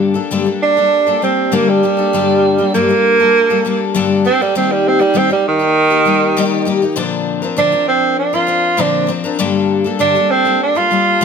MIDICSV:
0, 0, Header, 1, 3, 480
1, 0, Start_track
1, 0, Key_signature, -2, "minor"
1, 0, Tempo, 606061
1, 1690, Time_signature, 4, 2, 24, 8
1, 8908, End_track
2, 0, Start_track
2, 0, Title_t, "Tenor saxophone"
2, 0, Program_c, 0, 66
2, 493, Note_on_c, 0, 62, 107
2, 957, Note_off_c, 0, 62, 0
2, 974, Note_on_c, 0, 60, 79
2, 1216, Note_on_c, 0, 58, 85
2, 1228, Note_off_c, 0, 60, 0
2, 1338, Note_on_c, 0, 55, 83
2, 1350, Note_off_c, 0, 58, 0
2, 2150, Note_off_c, 0, 55, 0
2, 2170, Note_on_c, 0, 58, 111
2, 3102, Note_off_c, 0, 58, 0
2, 3372, Note_on_c, 0, 60, 106
2, 3501, Note_on_c, 0, 55, 94
2, 3513, Note_off_c, 0, 60, 0
2, 3608, Note_off_c, 0, 55, 0
2, 3618, Note_on_c, 0, 60, 85
2, 3735, Note_on_c, 0, 55, 91
2, 3747, Note_off_c, 0, 60, 0
2, 3860, Note_on_c, 0, 60, 89
2, 3872, Note_off_c, 0, 55, 0
2, 3963, Note_on_c, 0, 55, 96
2, 3975, Note_off_c, 0, 60, 0
2, 4097, Note_on_c, 0, 60, 94
2, 4109, Note_off_c, 0, 55, 0
2, 4206, Note_off_c, 0, 60, 0
2, 4213, Note_on_c, 0, 55, 87
2, 4323, Note_off_c, 0, 55, 0
2, 4339, Note_on_c, 0, 51, 119
2, 5501, Note_off_c, 0, 51, 0
2, 6005, Note_on_c, 0, 62, 107
2, 6235, Note_off_c, 0, 62, 0
2, 6240, Note_on_c, 0, 60, 96
2, 6476, Note_off_c, 0, 60, 0
2, 6485, Note_on_c, 0, 62, 81
2, 6607, Note_on_c, 0, 65, 84
2, 6619, Note_off_c, 0, 62, 0
2, 6969, Note_on_c, 0, 62, 93
2, 6981, Note_off_c, 0, 65, 0
2, 7200, Note_off_c, 0, 62, 0
2, 7922, Note_on_c, 0, 62, 102
2, 8159, Note_on_c, 0, 60, 102
2, 8171, Note_off_c, 0, 62, 0
2, 8394, Note_off_c, 0, 60, 0
2, 8417, Note_on_c, 0, 62, 88
2, 8528, Note_on_c, 0, 65, 91
2, 8540, Note_off_c, 0, 62, 0
2, 8908, Note_off_c, 0, 65, 0
2, 8908, End_track
3, 0, Start_track
3, 0, Title_t, "Twelve-string acoustic guitar"
3, 0, Program_c, 1, 25
3, 0, Note_on_c, 1, 43, 93
3, 0, Note_on_c, 1, 50, 79
3, 0, Note_on_c, 1, 55, 81
3, 0, Note_on_c, 1, 58, 86
3, 0, Note_on_c, 1, 62, 89
3, 0, Note_on_c, 1, 69, 94
3, 102, Note_off_c, 1, 69, 0
3, 112, Note_off_c, 1, 58, 0
3, 112, Note_off_c, 1, 62, 0
3, 112, Note_on_c, 1, 69, 61
3, 119, Note_off_c, 1, 55, 0
3, 121, Note_off_c, 1, 43, 0
3, 121, Note_on_c, 1, 62, 59
3, 122, Note_on_c, 1, 58, 50
3, 123, Note_off_c, 1, 50, 0
3, 128, Note_on_c, 1, 55, 48
3, 238, Note_off_c, 1, 55, 0
3, 239, Note_off_c, 1, 69, 0
3, 243, Note_on_c, 1, 43, 72
3, 244, Note_off_c, 1, 58, 0
3, 244, Note_off_c, 1, 62, 0
3, 247, Note_on_c, 1, 55, 89
3, 248, Note_on_c, 1, 50, 83
3, 254, Note_on_c, 1, 58, 83
3, 254, Note_on_c, 1, 62, 95
3, 259, Note_on_c, 1, 69, 86
3, 352, Note_off_c, 1, 69, 0
3, 359, Note_off_c, 1, 62, 0
3, 361, Note_off_c, 1, 58, 0
3, 362, Note_on_c, 1, 69, 47
3, 365, Note_off_c, 1, 43, 0
3, 367, Note_off_c, 1, 50, 0
3, 367, Note_off_c, 1, 55, 0
3, 368, Note_on_c, 1, 62, 47
3, 370, Note_on_c, 1, 58, 45
3, 379, Note_on_c, 1, 55, 39
3, 599, Note_off_c, 1, 69, 0
3, 602, Note_off_c, 1, 62, 0
3, 608, Note_on_c, 1, 69, 46
3, 609, Note_off_c, 1, 58, 0
3, 612, Note_on_c, 1, 62, 42
3, 613, Note_off_c, 1, 55, 0
3, 619, Note_on_c, 1, 58, 39
3, 623, Note_on_c, 1, 55, 42
3, 836, Note_off_c, 1, 69, 0
3, 844, Note_off_c, 1, 62, 0
3, 845, Note_off_c, 1, 58, 0
3, 845, Note_on_c, 1, 69, 54
3, 853, Note_off_c, 1, 55, 0
3, 853, Note_on_c, 1, 62, 53
3, 855, Note_on_c, 1, 58, 46
3, 862, Note_on_c, 1, 55, 42
3, 957, Note_off_c, 1, 55, 0
3, 962, Note_off_c, 1, 58, 0
3, 966, Note_on_c, 1, 55, 52
3, 967, Note_off_c, 1, 69, 0
3, 971, Note_off_c, 1, 62, 0
3, 972, Note_on_c, 1, 58, 55
3, 981, Note_on_c, 1, 62, 59
3, 985, Note_on_c, 1, 69, 57
3, 1198, Note_off_c, 1, 55, 0
3, 1200, Note_off_c, 1, 58, 0
3, 1201, Note_on_c, 1, 43, 82
3, 1205, Note_off_c, 1, 62, 0
3, 1205, Note_off_c, 1, 69, 0
3, 1207, Note_on_c, 1, 50, 80
3, 1208, Note_on_c, 1, 55, 80
3, 1209, Note_on_c, 1, 58, 80
3, 1214, Note_on_c, 1, 62, 90
3, 1215, Note_on_c, 1, 69, 86
3, 1440, Note_off_c, 1, 55, 0
3, 1446, Note_off_c, 1, 43, 0
3, 1447, Note_off_c, 1, 58, 0
3, 1449, Note_off_c, 1, 50, 0
3, 1450, Note_on_c, 1, 55, 63
3, 1452, Note_off_c, 1, 62, 0
3, 1452, Note_off_c, 1, 69, 0
3, 1457, Note_on_c, 1, 58, 66
3, 1464, Note_on_c, 1, 62, 62
3, 1466, Note_on_c, 1, 69, 60
3, 1551, Note_off_c, 1, 69, 0
3, 1560, Note_on_c, 1, 69, 54
3, 1563, Note_off_c, 1, 62, 0
3, 1564, Note_off_c, 1, 58, 0
3, 1570, Note_off_c, 1, 55, 0
3, 1572, Note_on_c, 1, 62, 52
3, 1573, Note_on_c, 1, 58, 49
3, 1578, Note_on_c, 1, 55, 40
3, 1685, Note_off_c, 1, 69, 0
3, 1688, Note_off_c, 1, 55, 0
3, 1688, Note_off_c, 1, 58, 0
3, 1688, Note_on_c, 1, 43, 70
3, 1689, Note_on_c, 1, 50, 78
3, 1691, Note_off_c, 1, 62, 0
3, 1697, Note_on_c, 1, 55, 84
3, 1698, Note_on_c, 1, 58, 83
3, 1699, Note_on_c, 1, 62, 83
3, 1706, Note_on_c, 1, 69, 90
3, 2036, Note_off_c, 1, 69, 0
3, 2038, Note_off_c, 1, 62, 0
3, 2045, Note_on_c, 1, 69, 53
3, 2047, Note_off_c, 1, 58, 0
3, 2048, Note_on_c, 1, 62, 53
3, 2050, Note_off_c, 1, 43, 0
3, 2050, Note_off_c, 1, 50, 0
3, 2053, Note_off_c, 1, 55, 0
3, 2056, Note_on_c, 1, 58, 47
3, 2062, Note_on_c, 1, 55, 45
3, 2167, Note_off_c, 1, 55, 0
3, 2168, Note_off_c, 1, 69, 0
3, 2169, Note_off_c, 1, 62, 0
3, 2172, Note_on_c, 1, 43, 79
3, 2174, Note_off_c, 1, 58, 0
3, 2176, Note_on_c, 1, 55, 74
3, 2177, Note_on_c, 1, 50, 71
3, 2181, Note_on_c, 1, 62, 78
3, 2183, Note_on_c, 1, 58, 76
3, 2187, Note_on_c, 1, 69, 84
3, 2279, Note_off_c, 1, 69, 0
3, 2289, Note_off_c, 1, 62, 0
3, 2289, Note_on_c, 1, 69, 54
3, 2291, Note_off_c, 1, 43, 0
3, 2292, Note_off_c, 1, 58, 0
3, 2294, Note_off_c, 1, 50, 0
3, 2294, Note_off_c, 1, 55, 0
3, 2298, Note_on_c, 1, 62, 52
3, 2302, Note_on_c, 1, 58, 47
3, 2305, Note_on_c, 1, 55, 44
3, 2523, Note_off_c, 1, 69, 0
3, 2530, Note_off_c, 1, 62, 0
3, 2533, Note_off_c, 1, 58, 0
3, 2533, Note_on_c, 1, 69, 51
3, 2538, Note_off_c, 1, 55, 0
3, 2539, Note_on_c, 1, 62, 40
3, 2542, Note_on_c, 1, 58, 45
3, 2549, Note_on_c, 1, 55, 38
3, 2763, Note_off_c, 1, 69, 0
3, 2766, Note_off_c, 1, 62, 0
3, 2770, Note_off_c, 1, 58, 0
3, 2772, Note_on_c, 1, 69, 58
3, 2775, Note_on_c, 1, 62, 58
3, 2777, Note_off_c, 1, 55, 0
3, 2779, Note_on_c, 1, 58, 55
3, 2787, Note_on_c, 1, 55, 50
3, 2879, Note_off_c, 1, 55, 0
3, 2887, Note_off_c, 1, 58, 0
3, 2888, Note_on_c, 1, 55, 60
3, 2892, Note_off_c, 1, 69, 0
3, 2893, Note_off_c, 1, 62, 0
3, 2896, Note_on_c, 1, 58, 69
3, 2904, Note_on_c, 1, 62, 65
3, 2909, Note_on_c, 1, 69, 69
3, 3123, Note_off_c, 1, 55, 0
3, 3124, Note_off_c, 1, 58, 0
3, 3125, Note_on_c, 1, 43, 88
3, 3126, Note_off_c, 1, 62, 0
3, 3126, Note_on_c, 1, 50, 84
3, 3130, Note_off_c, 1, 69, 0
3, 3133, Note_on_c, 1, 55, 88
3, 3133, Note_on_c, 1, 58, 94
3, 3136, Note_on_c, 1, 62, 100
3, 3140, Note_on_c, 1, 69, 97
3, 3352, Note_off_c, 1, 55, 0
3, 3358, Note_off_c, 1, 58, 0
3, 3362, Note_on_c, 1, 55, 53
3, 3363, Note_off_c, 1, 62, 0
3, 3368, Note_off_c, 1, 43, 0
3, 3368, Note_on_c, 1, 58, 63
3, 3369, Note_off_c, 1, 50, 0
3, 3369, Note_off_c, 1, 69, 0
3, 3372, Note_on_c, 1, 62, 60
3, 3379, Note_on_c, 1, 69, 64
3, 3477, Note_off_c, 1, 69, 0
3, 3487, Note_off_c, 1, 55, 0
3, 3487, Note_on_c, 1, 69, 46
3, 3489, Note_off_c, 1, 58, 0
3, 3492, Note_off_c, 1, 62, 0
3, 3500, Note_on_c, 1, 62, 53
3, 3503, Note_on_c, 1, 58, 45
3, 3508, Note_on_c, 1, 55, 44
3, 3597, Note_off_c, 1, 55, 0
3, 3599, Note_off_c, 1, 58, 0
3, 3606, Note_on_c, 1, 51, 76
3, 3607, Note_on_c, 1, 55, 79
3, 3608, Note_on_c, 1, 58, 74
3, 3609, Note_off_c, 1, 62, 0
3, 3609, Note_off_c, 1, 69, 0
3, 3612, Note_on_c, 1, 63, 86
3, 3616, Note_on_c, 1, 67, 80
3, 3944, Note_off_c, 1, 67, 0
3, 3954, Note_on_c, 1, 67, 59
3, 3956, Note_off_c, 1, 63, 0
3, 3966, Note_on_c, 1, 63, 54
3, 3968, Note_off_c, 1, 51, 0
3, 3968, Note_off_c, 1, 58, 0
3, 3969, Note_off_c, 1, 55, 0
3, 3977, Note_on_c, 1, 58, 45
3, 4067, Note_off_c, 1, 58, 0
3, 4069, Note_on_c, 1, 51, 70
3, 4071, Note_off_c, 1, 67, 0
3, 4074, Note_off_c, 1, 63, 0
3, 4075, Note_on_c, 1, 55, 71
3, 4076, Note_on_c, 1, 58, 78
3, 4080, Note_on_c, 1, 67, 73
3, 4084, Note_on_c, 1, 63, 84
3, 4185, Note_off_c, 1, 67, 0
3, 4193, Note_off_c, 1, 63, 0
3, 4194, Note_on_c, 1, 67, 53
3, 4200, Note_off_c, 1, 51, 0
3, 4202, Note_off_c, 1, 58, 0
3, 4203, Note_off_c, 1, 55, 0
3, 4203, Note_on_c, 1, 63, 48
3, 4211, Note_on_c, 1, 58, 41
3, 4421, Note_off_c, 1, 67, 0
3, 4430, Note_on_c, 1, 67, 50
3, 4432, Note_off_c, 1, 63, 0
3, 4441, Note_off_c, 1, 58, 0
3, 4442, Note_on_c, 1, 63, 46
3, 4451, Note_on_c, 1, 58, 42
3, 4666, Note_off_c, 1, 67, 0
3, 4675, Note_on_c, 1, 67, 54
3, 4678, Note_off_c, 1, 63, 0
3, 4684, Note_off_c, 1, 58, 0
3, 4687, Note_on_c, 1, 63, 49
3, 4693, Note_on_c, 1, 58, 49
3, 4792, Note_off_c, 1, 58, 0
3, 4794, Note_on_c, 1, 55, 59
3, 4797, Note_off_c, 1, 63, 0
3, 4801, Note_on_c, 1, 58, 61
3, 4802, Note_off_c, 1, 67, 0
3, 4806, Note_on_c, 1, 63, 54
3, 4811, Note_on_c, 1, 67, 68
3, 5037, Note_off_c, 1, 55, 0
3, 5038, Note_off_c, 1, 58, 0
3, 5042, Note_on_c, 1, 51, 88
3, 5044, Note_off_c, 1, 63, 0
3, 5046, Note_on_c, 1, 55, 95
3, 5047, Note_off_c, 1, 67, 0
3, 5047, Note_on_c, 1, 58, 90
3, 5053, Note_on_c, 1, 63, 99
3, 5056, Note_on_c, 1, 67, 105
3, 5260, Note_off_c, 1, 55, 0
3, 5269, Note_on_c, 1, 55, 68
3, 5270, Note_off_c, 1, 58, 0
3, 5277, Note_off_c, 1, 63, 0
3, 5278, Note_off_c, 1, 67, 0
3, 5279, Note_on_c, 1, 58, 69
3, 5285, Note_off_c, 1, 51, 0
3, 5286, Note_on_c, 1, 63, 71
3, 5287, Note_on_c, 1, 67, 78
3, 5393, Note_off_c, 1, 67, 0
3, 5399, Note_off_c, 1, 55, 0
3, 5400, Note_off_c, 1, 63, 0
3, 5403, Note_on_c, 1, 67, 58
3, 5404, Note_off_c, 1, 58, 0
3, 5409, Note_on_c, 1, 63, 50
3, 5418, Note_on_c, 1, 58, 52
3, 5510, Note_on_c, 1, 46, 91
3, 5514, Note_on_c, 1, 50, 89
3, 5516, Note_on_c, 1, 53, 95
3, 5517, Note_off_c, 1, 63, 0
3, 5518, Note_off_c, 1, 58, 0
3, 5520, Note_off_c, 1, 67, 0
3, 5520, Note_on_c, 1, 62, 95
3, 5521, Note_on_c, 1, 60, 89
3, 5523, Note_on_c, 1, 70, 92
3, 5866, Note_off_c, 1, 70, 0
3, 5873, Note_off_c, 1, 62, 0
3, 5876, Note_on_c, 1, 70, 50
3, 5879, Note_off_c, 1, 46, 0
3, 5880, Note_off_c, 1, 50, 0
3, 5882, Note_off_c, 1, 53, 0
3, 5882, Note_off_c, 1, 60, 0
3, 5883, Note_on_c, 1, 62, 54
3, 5892, Note_on_c, 1, 60, 48
3, 5895, Note_on_c, 1, 53, 47
3, 5990, Note_off_c, 1, 53, 0
3, 5991, Note_off_c, 1, 60, 0
3, 5992, Note_on_c, 1, 46, 80
3, 5997, Note_off_c, 1, 62, 0
3, 5999, Note_on_c, 1, 50, 69
3, 6000, Note_on_c, 1, 53, 70
3, 6001, Note_on_c, 1, 60, 80
3, 6002, Note_off_c, 1, 70, 0
3, 6007, Note_on_c, 1, 62, 76
3, 6010, Note_on_c, 1, 70, 79
3, 6105, Note_off_c, 1, 70, 0
3, 6107, Note_off_c, 1, 62, 0
3, 6114, Note_off_c, 1, 60, 0
3, 6114, Note_on_c, 1, 70, 53
3, 6117, Note_off_c, 1, 53, 0
3, 6117, Note_on_c, 1, 62, 54
3, 6119, Note_off_c, 1, 46, 0
3, 6123, Note_off_c, 1, 50, 0
3, 6123, Note_on_c, 1, 60, 43
3, 6127, Note_on_c, 1, 53, 43
3, 6594, Note_off_c, 1, 70, 0
3, 6597, Note_on_c, 1, 70, 55
3, 6600, Note_off_c, 1, 62, 0
3, 6602, Note_off_c, 1, 60, 0
3, 6603, Note_on_c, 1, 62, 45
3, 6606, Note_off_c, 1, 53, 0
3, 6612, Note_on_c, 1, 60, 50
3, 6614, Note_on_c, 1, 53, 47
3, 6697, Note_off_c, 1, 53, 0
3, 6706, Note_off_c, 1, 60, 0
3, 6707, Note_on_c, 1, 53, 59
3, 6709, Note_off_c, 1, 62, 0
3, 6715, Note_off_c, 1, 70, 0
3, 6716, Note_on_c, 1, 60, 54
3, 6719, Note_on_c, 1, 62, 60
3, 6725, Note_on_c, 1, 70, 63
3, 6946, Note_off_c, 1, 53, 0
3, 6946, Note_off_c, 1, 60, 0
3, 6947, Note_on_c, 1, 46, 75
3, 6948, Note_off_c, 1, 62, 0
3, 6952, Note_on_c, 1, 50, 88
3, 6955, Note_on_c, 1, 60, 81
3, 6956, Note_off_c, 1, 70, 0
3, 6956, Note_on_c, 1, 53, 85
3, 6958, Note_on_c, 1, 62, 86
3, 6965, Note_on_c, 1, 70, 93
3, 7173, Note_off_c, 1, 53, 0
3, 7183, Note_on_c, 1, 53, 58
3, 7185, Note_off_c, 1, 60, 0
3, 7187, Note_off_c, 1, 62, 0
3, 7194, Note_on_c, 1, 60, 65
3, 7195, Note_off_c, 1, 70, 0
3, 7196, Note_off_c, 1, 46, 0
3, 7196, Note_on_c, 1, 62, 59
3, 7198, Note_off_c, 1, 50, 0
3, 7205, Note_on_c, 1, 70, 67
3, 7307, Note_off_c, 1, 70, 0
3, 7314, Note_off_c, 1, 53, 0
3, 7314, Note_off_c, 1, 62, 0
3, 7317, Note_on_c, 1, 70, 58
3, 7320, Note_off_c, 1, 60, 0
3, 7323, Note_on_c, 1, 62, 58
3, 7332, Note_on_c, 1, 60, 54
3, 7336, Note_on_c, 1, 53, 46
3, 7434, Note_off_c, 1, 62, 0
3, 7434, Note_on_c, 1, 43, 89
3, 7435, Note_off_c, 1, 53, 0
3, 7435, Note_on_c, 1, 50, 93
3, 7437, Note_off_c, 1, 60, 0
3, 7438, Note_on_c, 1, 55, 88
3, 7440, Note_on_c, 1, 58, 99
3, 7441, Note_off_c, 1, 70, 0
3, 7443, Note_on_c, 1, 62, 96
3, 7447, Note_on_c, 1, 69, 92
3, 7787, Note_off_c, 1, 69, 0
3, 7797, Note_on_c, 1, 69, 57
3, 7799, Note_off_c, 1, 43, 0
3, 7799, Note_off_c, 1, 58, 0
3, 7799, Note_off_c, 1, 62, 0
3, 7800, Note_off_c, 1, 50, 0
3, 7801, Note_off_c, 1, 55, 0
3, 7808, Note_on_c, 1, 58, 50
3, 7809, Note_on_c, 1, 62, 54
3, 7819, Note_on_c, 1, 55, 48
3, 7912, Note_off_c, 1, 55, 0
3, 7913, Note_on_c, 1, 43, 74
3, 7914, Note_off_c, 1, 58, 0
3, 7917, Note_off_c, 1, 62, 0
3, 7917, Note_on_c, 1, 50, 78
3, 7918, Note_off_c, 1, 69, 0
3, 7922, Note_on_c, 1, 55, 75
3, 7924, Note_on_c, 1, 58, 82
3, 7926, Note_on_c, 1, 62, 83
3, 7928, Note_on_c, 1, 69, 90
3, 8029, Note_off_c, 1, 69, 0
3, 8038, Note_off_c, 1, 62, 0
3, 8038, Note_on_c, 1, 69, 54
3, 8039, Note_off_c, 1, 43, 0
3, 8041, Note_off_c, 1, 50, 0
3, 8042, Note_off_c, 1, 58, 0
3, 8043, Note_off_c, 1, 55, 0
3, 8048, Note_on_c, 1, 62, 45
3, 8052, Note_on_c, 1, 58, 50
3, 8059, Note_on_c, 1, 55, 42
3, 8268, Note_off_c, 1, 69, 0
3, 8274, Note_off_c, 1, 62, 0
3, 8278, Note_on_c, 1, 69, 47
3, 8281, Note_off_c, 1, 58, 0
3, 8284, Note_on_c, 1, 62, 44
3, 8286, Note_off_c, 1, 55, 0
3, 8291, Note_on_c, 1, 58, 45
3, 8295, Note_on_c, 1, 55, 40
3, 8506, Note_off_c, 1, 69, 0
3, 8514, Note_off_c, 1, 62, 0
3, 8516, Note_on_c, 1, 69, 51
3, 8522, Note_off_c, 1, 58, 0
3, 8523, Note_off_c, 1, 55, 0
3, 8523, Note_on_c, 1, 62, 55
3, 8531, Note_on_c, 1, 58, 44
3, 8533, Note_on_c, 1, 55, 43
3, 8630, Note_off_c, 1, 55, 0
3, 8634, Note_off_c, 1, 58, 0
3, 8639, Note_on_c, 1, 55, 55
3, 8640, Note_off_c, 1, 69, 0
3, 8641, Note_off_c, 1, 62, 0
3, 8644, Note_on_c, 1, 58, 58
3, 8650, Note_on_c, 1, 62, 61
3, 8657, Note_on_c, 1, 69, 63
3, 8875, Note_off_c, 1, 55, 0
3, 8878, Note_on_c, 1, 43, 79
3, 8878, Note_on_c, 1, 50, 82
3, 8880, Note_off_c, 1, 58, 0
3, 8880, Note_off_c, 1, 69, 0
3, 8881, Note_off_c, 1, 62, 0
3, 8908, Note_off_c, 1, 43, 0
3, 8908, Note_off_c, 1, 50, 0
3, 8908, End_track
0, 0, End_of_file